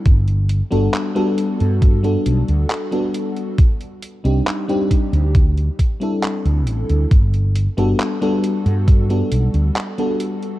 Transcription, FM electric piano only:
\new Staff \with { instrumentName = "FM electric piano" } { \time 4/4 \key g \major \tempo 4 = 68 r8. <g b d' fis' a'>8 <g b d' fis' a'>4 <g b d' fis' a'>4 <g b d' fis' a'>8. | r8. <g c' d' ees' g'>8 <g c' d' ees' g'>8. r8. <g c' d' e' a'>4~ <g c' d' e' a'>16 | r8. <g b d' fis' a'>8 <g b d' fis' a'>4 <g b d' fis' a'>4 <g b d' fis' a'>8. | }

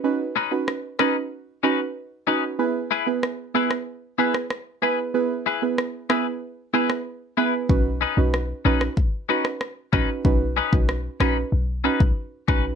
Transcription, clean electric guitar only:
\new Staff \with { instrumentName = "Clean electric guitar" } { \time 4/4 \key b \major \tempo 4 = 94 r8 <cis' dis' b'>16 r8. <cis' dis' b'>16 r8. <cis' dis' b'>16 r8. <cis' dis' b'>16 r16 | r8 <e' gis' b'>16 r8. <e' gis' b'>16 r8. <e' gis' b'>16 r8. <e' gis' b'>16 r16 | r8 <e' gis' b'>16 r8. <e' gis' b'>16 r8. <e' gis' b'>16 r8. <e' gis' b'>16 r16 | r8 <cis' dis' b'>16 r8. <cis' dis' b'>16 r8. <cis' dis' b'>16 r8. <cis' dis' b'>16 r16 |
r8 <cis' dis' b'>16 r8. <cis' dis' b'>16 r8. <cis' dis' b'>16 r8. <cis' dis' b'>16 r16 | }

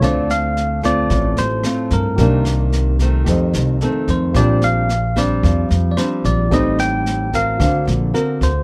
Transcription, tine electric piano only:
\new Staff \with { instrumentName = "Tine electric piano" } { \time 4/4 \key d \phrygian \tempo 4 = 111 d''8 f''4 d''4 c''4 bes'8~ | bes'8 r2 r8 a'8 c''8 | d''8 f''4 d''4 r16. d''32 c''8 d''8 | ees''8 g''4 f''4 r8 ais'8 c''8 | }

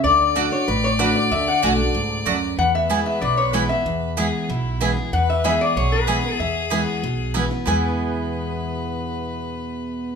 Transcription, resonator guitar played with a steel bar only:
\new Staff \with { instrumentName = "Resonator guitar played with a steel bar" } { \time 4/4 \key e \mixolydian \tempo 4 = 189 d''4. cis''8 b'8 cis''8 b'8 d''8 | e''8 fis''8 a''4. r4. | fis''8 e''4 e''8 d''8 cis''8 b'8 e''8~ | e''2. r4 |
fis''8 e''8 e''8 d''8 cis''8 b'4. | e''2. r4 | gis''1~ | gis''1 | }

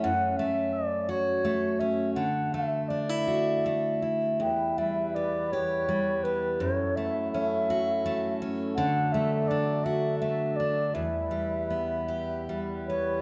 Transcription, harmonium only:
<<
  \new Staff \with { instrumentName = "Harmonium" } { \time 3/4 \key e \dorian \tempo 4 = 83 << { r2. | r2. | b'2. | a'2.~ |
a'2. | b'2. | } \\ { r2. | r2. | e'2.~ | e'2. |
d'2. | e'2. | } >> }
  \new Staff \with { instrumentName = "Harmonium" } { \clef bass \time 3/4 \key e \dorian r2. | r2. | g2. | fis2. |
fis2. | g2. | }
>>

